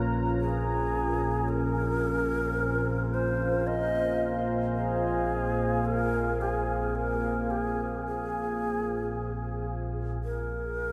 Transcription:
0.00 10.21 A#1 medium
0.00 10.22 A#2 medium
0.00 4.30 C#4 medium
0.00 10.92 F4 medium
0.00 10.20 G#4 medium
0.00 0.13 A#4 medium
0.00 1.48 C#5 medium
0.00 4.98 A#5 medium
0.41 1.50 G#4 medium
1.49 3.15 A#4 loud
2.05 10.92 G#5 medium
2.31 10.21 C5 medium
3.02 10.92 F5 medium
3.14 3.68 C5 medium
3.67 4.49 D#5 medium
4.76 5.87 G#4 medium
5.85 6.43 A#4 loud
6.41 6.97 G#4 medium
6.95 7.52 A#4 medium
7.50 8.04 G#4 medium
8.06 9.64 G#4 medium
10.22 10.92 A#1 medium
10.22 10.92 A#2 medium
10.22 10.92 A#3 medium
10.22 10.92 G#4 medium
10.22 10.92 A#4 loud

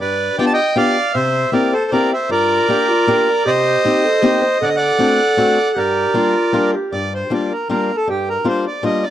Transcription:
0.00 0.29 G2 soft
0.00 0.36 B4 medium
0.00 0.38 D5 medium
0.38 0.58 B3 medium
0.38 0.58 D4 medium
0.38 0.58 F4 medium
0.38 0.58 G4 medium
0.38 0.45 D5 medium
0.38 0.46 G5 loud
0.46 0.53 A5 medium
0.53 0.75 D#5 medium
0.53 0.77 G5 loud
0.76 0.95 B3 medium
0.76 0.96 D4 soft
0.76 0.96 F4 medium
0.76 0.96 G4 medium
0.76 1.12 D5 medium
0.76 1.16 F5 loud
1.14 1.43 C3 medium
1.14 1.51 C5 medium
1.14 1.54 E5 medium
1.52 1.73 A#3 medium
1.52 1.73 C4 soft
1.52 1.73 E4 medium
1.52 1.73 G4 medium
1.52 1.72 A#4 medium
1.52 1.74 D5 medium
1.73 1.91 A4 medium
1.73 1.92 C5 medium
1.91 2.12 A#3 medium
1.91 2.12 C4 medium
1.91 2.12 E4 soft
1.91 2.13 G4 medium
1.91 2.11 A#4 medium
1.91 2.12 D5 medium
2.13 2.30 C5 medium
2.13 2.30 E5 medium
2.29 2.59 G2 medium
2.29 2.70 F4 medium
2.29 3.43 A#4 medium
2.29 3.50 D5 loud
2.68 2.89 A#3 medium
2.68 2.89 D4 medium
2.68 2.90 F4 soft
2.68 2.90 G4 medium
2.88 3.09 F4 medium
3.07 3.28 A#3 medium
3.07 3.28 D4 medium
3.07 3.28 F4 medium
3.07 3.28 G4 medium
3.07 3.47 A#4 loud
3.45 3.75 C3 medium
3.45 3.84 G4 medium
3.45 4.58 C5 medium
3.45 4.65 D#5 loud
3.85 4.05 A#3 medium
3.85 4.05 C4 soft
3.85 4.05 D#4 soft
3.85 4.06 G4 medium
3.85 4.05 G4 medium
4.04 4.23 A4 loud
4.22 4.43 A#3 medium
4.22 4.43 C4 medium
4.22 4.43 D#4 medium
4.22 4.43 G4 medium
4.22 4.44 G4 medium
4.42 4.60 C5 medium
4.61 4.90 D3 medium
4.61 5.77 A4 loud
4.61 4.69 D5 medium
4.61 4.70 F#5 loud
4.69 4.76 D#5 medium
4.76 5.72 D5 medium
4.76 5.79 F#5 loud
4.99 5.19 A3 medium
4.99 5.19 C4 medium
4.99 5.19 D4 medium
4.99 5.19 F#4 medium
5.37 5.57 A3 medium
5.37 5.57 C4 medium
5.37 5.57 D4 medium
5.37 5.58 F#4 medium
5.75 6.05 G2 medium
5.75 6.17 G4 medium
5.75 6.71 A#4 medium
5.75 6.71 D5 medium
6.14 6.34 G3 soft
6.14 6.34 A#3 medium
6.14 6.35 D4 medium
6.14 6.35 F4 medium
6.14 6.53 F4 medium
6.53 6.74 G3 medium
6.53 6.74 A#3 medium
6.53 6.74 D4 medium
6.53 6.74 F4 medium
6.53 6.76 A#4 medium
6.74 6.93 G4 medium
6.92 7.22 G2 medium
6.92 7.14 D5 medium
7.14 7.33 C5 medium
7.30 7.51 G3 medium
7.30 7.51 A#3 soft
7.30 7.51 D4 medium
7.30 7.52 F4 medium
7.30 7.53 D5 medium
7.52 7.68 A#4 medium
7.69 7.90 G3 medium
7.69 7.90 A#3 medium
7.69 7.90 D4 soft
7.69 7.90 F4 medium
7.69 7.96 A#4 medium
7.96 8.08 A4 medium
8.08 8.37 G2 medium
8.08 8.29 G4 medium
8.29 8.48 A#4 medium
8.44 8.65 G3 medium
8.44 8.65 A#3 soft
8.44 8.65 D4 medium
8.44 8.66 F4 medium
8.44 8.65 C5 medium
8.67 8.84 D5 medium
8.83 9.04 G3 medium
8.83 9.04 A#3 soft
8.83 9.04 D4 medium
8.83 9.04 F4 medium
8.83 9.05 D#5 medium
9.03 9.10 D5 medium

